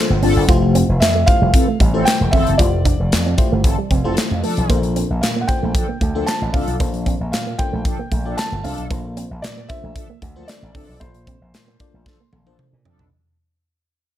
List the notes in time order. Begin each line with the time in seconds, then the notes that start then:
Already playing: A#3 D4 F4 A4 C5
0.10 G1
0.22 G1 F3 C4 D4 A4, open hi-hat
0.36 F#1
0.48 F1 A3 E4 F4 G4 C5, kick, closed hi-hat
0.63 muted clean electric guitar stroke
0.75 C4, closed hi-hat
0.89 F1
1.00 F2 E5, snare, clap, closed hi-hat
1.15 A3
1.26 A3 E4 F4 G4 C5 F5, kick, closed hi-hat
1.42 F1 G3
1.54 E3 C4 A4, muted clean electric guitar stroke, kick, closed hi-hat
1.68 A3
1.80 A1 G3, kick, closed hi-hat
1.94 E3 A3 C4 E4 F4 G4 A4 C5
2.05 G5, snare, clap, closed hi-hat
2.21 E1
2.31 G1 E3 C4 A4 E5, kick, open hi-hat
2.47 F#1, closed hi-hat
2.58 F1 A3 E4 F4 G4 C5 D5, kick, closed hi-hat
2.73 muted clean electric guitar stroke
2.85 D4, kick, closed hi-hat
3.00 F1
3.12 F2, snare, clap, closed hi-hat
3.26 C4
3.37 A3 E4 F4 G4 C5, muted clean electric guitar stroke, kick, closed hi-hat
3.52 G1 A3
3.64 G1 E3 C4 A4, muted clean electric guitar stroke, kick, closed hi-hat
3.78 G3
3.91 F1 C4, kick, closed hi-hat
4.04 F1 E3 A3 C4 E4 F4 G4 A4 C5
4.17 snare, clap, closed hi-hat
4.31 F2
4.43 F3 A3 D4 A4, open hi-hat
4.57 B1, closed hi-hat
4.69 A#1 A#3 D4 F4 A4 C5, kick, closed hi-hat
4.83 muted clean electric guitar stroke, closed hi-hat
4.96 C4, closed hi-hat
5.10 A#1
5.21 A#2 F5, snare, clap, closed hi-hat
5.36 A#3
5.41 F#5
5.47 A#3 D4 F4 A4 C5 G5, muted clean electric guitar stroke, kick, closed hi-hat
5.63 A#1 A3
5.75 F3 D4 A4, muted clean electric guitar stroke, kick, closed hi-hat
5.89 A#3
6.01 D2 A3, kick, closed hi-hat
6.15 F3 A#3 D4 F4 A4 C5
6.26 A5, snare, clap, closed hi-hat
6.42 A1
6.53 C2 F3 C4 D4 A4 F5, kick, open hi-hat
6.68 B1, closed hi-hat
6.80 A#1 A#3 D4 F4 A4 C5, kick, closed hi-hat
6.94 muted clean electric guitar stroke, closed hi-hat
7.06 C4, kick, closed hi-hat
7.21 A#1
7.32 A#2 F5, snare, clap, closed hi-hat
7.47 A#3
7.58 A#3 D4 F4 A4 C5 G5, muted clean electric guitar stroke, kick, closed hi-hat
7.73 A#1 A3
7.85 F3 D4 A4, kick, closed hi-hat
7.99 A#3
8.12 A#1 A3, kick, closed hi-hat
8.25 F3 A#3 D4 F4 A4 D5
8.37 A5, snare, clap, closed hi-hat
8.52 G1
8.64 C2 F3 C4 D4 A4 F5, open hi-hat
8.78 B1, closed hi-hat
8.90 A#1 A#3 D4 F4 A4 C5, kick, closed hi-hat
9.05 muted clean electric guitar stroke
9.17 C4, closed hi-hat
9.31 A#1
9.42 A#2 D5, snare, clap, closed hi-hat
9.57 A#3
9.69 A#3 D4 F4 A4 C5 E5, muted clean electric guitar stroke, kick, closed hi-hat
9.83 A#1 A3
9.96 F3 D4 A4, muted clean electric guitar stroke, kick, closed hi-hat
10.10 A#3
10.22 D2 A3, kick, closed hi-hat
10.36 F3 A#3 D4 F4 A4 C5
10.48 D5, snare, clap, closed hi-hat
10.63 A1
10.75 C2 F3 C4 D4 A4, kick, open hi-hat
10.89 B1
11.00 A#1 A#3 D4 F4 A4 C5, kick, closed hi-hat
11.14 muted clean electric guitar stroke, closed hi-hat
11.27 C4, kick, closed hi-hat
11.41 A#1
11.54 A#2, snare, clap, closed hi-hat
11.68 A#3
11.80 A#3 D4 F4 A4 D5, muted clean electric guitar stroke, kick, closed hi-hat
11.94 A#1 A3
12.06 F3 D4 A4, muted clean electric guitar stroke, kick, snare
12.20 A#3
12.33 A#1 A3, high tom
12.46 F3 A#3 D4 F4 A4 C5, high tom
12.59 mid tom
12.73 A#2
12.85 F3 C4 D4 A4, floor tom
12.99 B1, floor tom